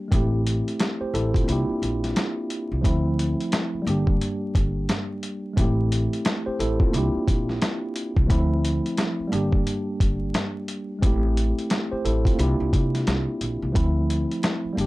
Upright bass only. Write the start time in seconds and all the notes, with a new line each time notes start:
0.12 A1
1.01 muted upright bass stroke
1.14 A1
1.48 C2
1.69 muted upright bass stroke
1.82 A#1
2.72 C2
2.84 D2
3.74 muted upright bass stroke
3.87 G1
4.55 G1
5.57 A1
6.47 muted upright bass stroke
6.59 A1
6.93 C2
7.15 muted upright bass stroke
7.28 A#1
8.17 C2
8.30 D2
9.19 muted upright bass stroke
9.32 G1
10.00 G1
11.03 A1
11.92 muted upright bass stroke
12.05 A1
12.39 C2
12.60 C2
12.73 C3
13.07 C2
13.41 A#1
13.62 C2
13.75 D2
14.65 muted upright bass stroke
14.77 G1